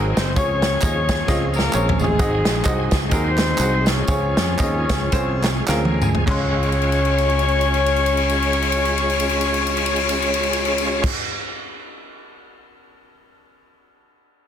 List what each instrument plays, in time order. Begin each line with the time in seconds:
Already playing: fingered electric bass G#1, tonewheel organ F#3 G#3 C4 D#4 G#4, horn section C4 D#4, upright piano C4 D#4 F#4 G#4 A#4
0.17 fingered electric bass F#1, horn section C4 C5, snare, closed hi-hat, tambourine
0.36 fingered electric bass C#2, upright piano C#3 C4 C#4 F4 G#4 C#5, tonewheel organ F3 G#3 C#4 G4, horn section C#4 F4 G#4 C#5, kick, closed hi-hat, tambourine
0.43 tonewheel organ G#4
0.62 snare, closed hi-hat, tambourine
0.82 fingered electric bass D#2, upright piano C4 C#4 F4 G#4 D#5, kick, clap, closed hi-hat, tambourine
1.08 kick, snare, closed hi-hat, tambourine
1.27 fingered electric bass C#2, upright piano C4 C#4 F4 G#4 D#5, kick, snare, tambourine
1.54 horn section A#3 F4 A#4, tambourine
1.59 snare
1.73 fingered electric bass A#1, upright piano C4 C#4 F4 G#4 C#5, clap, tambourine
1.89 floor tom
1.99 fingered electric bass A1, horn section G#3 C4 D#4 G#4, tambourine
2.04 floor tom
2.18 fingered electric bass G#1, upright piano G#2 C4 D#4 F#4 G#4 D#5, tonewheel organ F#3 G#3 C4 D#4 F#4, kick, closed hi-hat, tambourine
2.25 tonewheel organ G#4
2.45 fingered electric bass A#1, snare, closed hi-hat, tambourine
2.64 fingered electric bass C2, upright piano C4 D#4 F#4 G#4 D#5, kick, clap, closed hi-hat, tambourine
2.91 fingered electric bass C#2, kick, snare, closed hi-hat, tambourine
3.11 fingered electric bass D#2, upright piano C4 D#4 F#4 G#4 A#4, horn section C4 D#4 F#4 C5, kick, closed hi-hat, tambourine
3.38 snare, clap, closed hi-hat, tambourine
3.58 fingered electric bass C2, upright piano C4 D#4 F#4 G#4 F#5, clap, closed hi-hat, tambourine
3.86 horn section C#4 F4 G#4 C#5, snare, closed hi-hat, tambourine
4.08 fingered electric bass C#2, upright piano C#3 C4 C#4 F4 G#4 C#5, tonewheel organ F3 G#3 C#4 F#4, kick, closed hi-hat, tambourine
4.15 tonewheel organ G#4
4.37 fingered electric bass F2, snare, closed hi-hat, tambourine
4.59 fingered electric bass D#2, upright piano C4 C#4 F4 G#4 D#5, kick, clap, closed hi-hat, tambourine
4.89 fingered electric bass C#2, kick, snare, closed hi-hat, tambourine
5.12 fingered electric bass C2, upright piano C4 C#4 F4 G#4 C5, kick, closed hi-hat, tambourine
5.43 snare, clap, closed hi-hat, tambourine
5.68 fingered electric bass D2, upright piano C4 C#4 F4 G#4 A#4 F5, snare, clap, tambourine
5.85 high tom
6.02 upright piano G#5, mid tom, tambourine
6.15 floor tom
6.26 fingered electric bass C#2, upright piano C#2 G#3 C#4 F4, tonewheel organ G#3 C#4 F4 C#5, horn section C#4 C#5, kick, clap, crash
6.30 upright piano C6
6.63 crash
6.72 ride
6.82 crash
6.92 ride
7.05 crash
7.18 ride
7.29 crash
7.39 ride
7.48 crash
7.61 ride
7.74 crash
7.86 ride
7.96 crash
8.06 ride
8.17 crash
8.29 ride
8.42 crash
8.53 ride
8.62 crash
8.72 ride
8.85 crash
8.98 ride
9.10 crash
9.20 ride
9.29 crash
9.41 ride
9.54 crash
9.67 ride
9.77 crash
9.86 ride
9.96 crash
10.09 ride
10.22 crash
10.34 ride
10.43 crash
10.53 ride
10.65 crash
10.78 ride
11.04 kick, crash